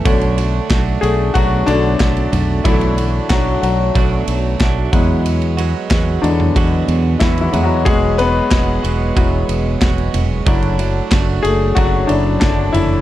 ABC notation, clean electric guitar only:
X:1
M:4/4
L:1/8
Q:1/4=92
K:Emix
V:1 name="Clean electric guitar"
[B,,F,A,DF] [A,DF] [F,A,DF] [A,DF] [B,,F,A,DF]2 [F,A,DF] [A,DF] | [B,,F,A,DF] [A,DF] [F,A,DF]2 [B,,F,A,DF]2 [F,A,DF] [E,,B,,F,G,B,F]- | [E,,B,,F,G,B,F] [F,G,B,F] [F,G,B,F]2 [E,,B,,F,G,B,F]2 [F,G,B,F] [F,G,B,F] | [E,,B,,F,G,B,F] [F,G,B,F] [F,G,B,F] [F,G,B,F] [E,,B,,F,G,B,F]2 [F,G,B,F]2 |
[F,,C,F,A,DF] [F,A,DF] [F,A,DF]2 [F,,C,F,A,DF]2 [F,A,DF]2 |]